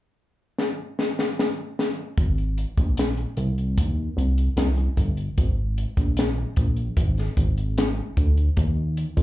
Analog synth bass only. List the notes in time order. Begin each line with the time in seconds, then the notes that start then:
2.18 G#1
2.78 A#1
3.37 C2
3.78 D#2
4.17 C2
4.57 C2
4.97 G1
5.38 G#1
5.97 A#1
6.57 A#1
6.97 G#1
7.37 G#1
8.17 D2
8.57 D#2
9.17 F2